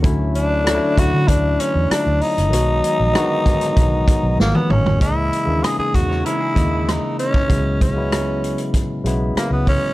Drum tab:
HH |x-x-x-x-x-x-x-ox|x-x-x-xxx-x-----|x-x-x-x-x-x-x-x-|x-x-x-xxx-x-x-o-|
SD |----r-------r---|----r--r----o---|----r--r----r---|----r-------r---|
T1 |----------------|-------------o--|----------------|----------------|
T2 |----------------|--------------o-|----------------|----------------|
FT |----------------|---------------o|----------------|----------------|
BD |o-----o-o-------|------o-o-o-----|o-----o---o----o|o-o-----o-----o-|